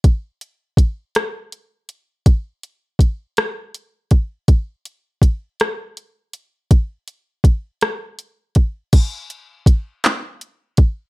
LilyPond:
\new DrumStaff \with { instrumentName = "Drums" } \drummode { \time 6/8 \tempo 4. = 54 <hh bd>8 hh8 <hh bd>8 <hh ss>8 hh8 hh8 | <hh bd>8 hh8 <hh bd>8 <hh ss>8 hh8 <hh bd>8 | <hh bd>8 hh8 <hh bd>8 <hh ss>8 hh8 hh8 | <hh bd>8 hh8 <hh bd>8 <hh ss>8 hh8 <hh bd>8 |
<cymc hh bd>8 hh8 <hh bd>8 <hc hh>8 hh8 <hh bd>8 | }